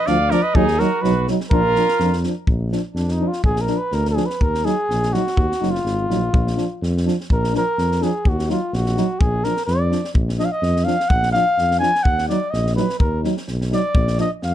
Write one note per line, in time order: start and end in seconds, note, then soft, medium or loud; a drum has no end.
0.06 0.34 D2 medium
0.06 0.17 F3 medium
0.06 0.16 D4 medium
0.06 0.32 D5 medium
0.06 0.34 F5 medium
0.06 snare soft
0.30 0.40 F3 medium
0.30 0.41 D4 medium
0.30 0.44 A#4 medium
0.30 0.45 D5 loud
0.30 snare soft
0.42 0.56 B4 medium
0.42 0.57 D#5 loud
0.55 0.82 D#2 loud
0.55 0.65 F#3 medium
0.55 0.81 D#4 loud
0.55 0.65 D#4 medium
0.55 0.81 G#4 loud
0.55 kick medium
0.68 snare soft
0.79 0.89 F#3 medium
0.79 0.89 D#4 medium
0.79 1.03 F#4 medium
0.79 1.03 A#4 loud
0.79 snare soft
1.02 1.30 B1 medium
1.02 1.12 F#3 medium
1.02 1.13 D#4 medium
1.02 1.27 F#4 medium
1.02 1.27 B4 medium
1.02 snare soft
1.27 1.37 F#3 medium
1.27 1.37 D#4 medium
1.27 snare soft
1.41 snare soft
1.51 1.78 A#1 medium
1.51 1.61 F3 medium
1.51 1.61 D4 medium
1.51 2.20 F4 loud
1.51 2.20 A#4 loud
1.51 kick loud
1.76 1.86 F3 medium
1.76 1.86 D4 medium
1.76 snare soft
1.88 snare soft
1.99 2.26 F2 medium
1.99 2.10 F3 medium
1.99 2.10 D4 medium
1.99 snare soft
2.13 snare soft
2.24 2.33 F3 medium
2.24 2.33 D4 medium
2.24 snare soft
2.47 2.74 A#1 medium
2.47 kick medium
2.71 2.81 F3 soft
2.71 2.81 D4 soft
2.71 snare soft
2.94 3.21 F2 medium
2.94 3.13 D4 medium
2.94 snare soft
3.08 3.29 D#4 medium
3.08 snare soft
3.19 3.30 F3 medium
3.19 3.29 D4 medium
3.28 3.44 F4 medium
3.33 snare soft
3.43 3.70 A#1 medium
3.43 3.63 G#4 medium
3.43 kick medium
3.56 snare soft
3.61 3.79 A#4 medium
3.67 3.77 F3 medium
3.67 3.78 D4 medium
3.67 snare soft
3.77 3.95 B4 medium
3.92 4.19 D2 loud
3.92 4.09 A#4 medium
3.92 snare soft
4.05 snare soft
4.10 4.27 G#4 medium
4.15 4.26 F3 medium
4.15 4.25 D4 medium
4.15 snare soft
4.26 4.43 B4 medium
4.30 snare soft
4.41 4.67 D#2 medium
4.41 4.66 A#4 loud
4.41 kick medium
4.54 snare soft
4.64 4.74 F#3 medium
4.64 4.74 D#4 medium
4.64 5.14 G#4 loud
4.64 snare soft
4.90 5.16 A#1 medium
4.90 snare soft
5.03 snare soft
5.12 5.22 F#3 medium
5.12 5.23 D#4 medium
5.12 5.72 F#4 medium
5.12 snare soft
5.27 snare soft
5.37 5.50 D#2 medium
5.37 kick medium
5.52 snare soft
5.61 5.83 F#1 medium
5.61 5.71 F#3 medium
5.61 5.71 D#4 medium
5.61 snare soft
5.71 6.90 F4 medium
5.75 snare soft
5.84 6.06 G#1 medium
5.84 snare soft
6.09 6.31 A#1 medium
6.09 6.19 F#3 medium
6.09 6.18 D#4 soft
6.09 snare soft
6.33 6.60 A#1 medium
6.33 kick medium
6.47 snare soft
6.56 6.66 F3 medium
6.56 6.66 D4 medium
6.56 snare soft
6.82 7.08 F2 loud
6.82 snare soft
6.97 snare soft
7.05 7.16 F3 medium
7.05 7.15 D4 soft
7.05 snare soft
7.21 snare soft
7.30 7.56 A#1 medium
7.30 7.53 A#4 medium
7.30 kick medium
7.44 snare soft
7.52 7.63 F3 medium
7.52 7.62 D4 medium
7.52 snare soft
7.57 8.04 A#4 medium
7.78 8.04 F2 medium
7.78 snare soft
7.92 snare soft
8.01 8.11 F3 medium
8.01 8.11 D4 medium
8.01 8.30 G#4 medium
8.01 snare soft
8.25 8.52 D#2 medium
8.25 8.50 F#4 medium
8.25 kick medium
8.39 snare soft
8.48 8.59 F#3 medium
8.48 8.58 D#4 medium
8.48 8.76 F4 medium
8.48 snare soft
8.73 8.99 A#1 medium
8.73 9.21 F#4 medium
8.73 snare soft
8.86 snare soft
8.95 9.07 F#3 medium
8.95 9.05 D#4 medium
8.95 snare soft
9.20 9.47 A#1 medium
9.20 9.46 G#4 medium
9.20 kick medium
9.44 9.54 F3 medium
9.44 9.53 D4 medium
9.44 9.65 A#4 medium
9.44 snare soft
9.57 snare soft
9.66 9.94 F2 loud
9.66 10.11 D5 medium
9.66 snare soft
9.90 10.01 F3 medium
9.90 10.00 D4 soft
9.90 snare soft
10.04 snare soft
10.14 10.41 A#1 medium
10.14 kick medium
10.29 snare soft
10.38 10.49 F3 medium
10.38 10.48 D4 medium
10.38 10.47 D#5 medium
10.38 snare soft
10.45 10.54 F5 medium
10.52 10.86 D#5 medium
10.62 10.89 F2 loud
10.62 snare soft
10.76 snare soft
10.85 10.96 F3 medium
10.85 10.95 D4 medium
10.85 11.10 F5 medium
10.85 snare soft
11.00 snare soft
11.09 11.36 A#1 medium
11.09 11.32 F#5 loud
11.09 kick medium
11.23 snare soft
11.32 11.44 F3 medium
11.32 11.44 D4 medium
11.32 11.77 F5 loud
11.32 snare soft
11.58 11.84 F2 medium
11.58 snare soft
11.71 snare soft
11.79 11.90 F3 medium
11.79 11.90 D4 medium
11.79 12.05 G#5 loud
11.79 snare soft
11.95 snare soft
12.03 12.31 D#2 medium
12.03 12.28 F#5 medium
12.03 kick medium
12.18 snare soft
12.28 12.38 F#3 medium
12.28 12.39 D#4 medium
12.28 12.52 D5 medium
12.28 snare soft
12.50 12.79 A#1 loud
12.50 12.75 D#5 medium
12.50 snare soft
12.67 snare soft
12.75 12.86 F#3 medium
12.75 12.85 D#4 medium
12.75 12.98 B4 medium
12.75 snare soft
12.89 snare soft
12.99 13.27 D#2 medium
12.99 13.22 A#4 medium
12.99 kick medium
13.23 13.34 F#3 medium
13.23 13.32 D#4 medium
13.23 snare soft
13.37 snare soft
13.48 13.74 B1 medium
13.48 snare soft
13.61 snare soft
13.71 13.81 F#3 medium
13.71 13.80 D#4 medium
13.71 snare soft
13.75 14.17 D5 loud
13.95 14.21 A#1 loud
13.95 kick loud
14.08 snare soft
14.18 14.28 F3 medium
14.18 14.27 D4 medium
14.18 14.31 D#5 medium
14.18 snare soft
14.42 14.54 F2 medium
14.42 14.54 F5 medium
14.42 snare soft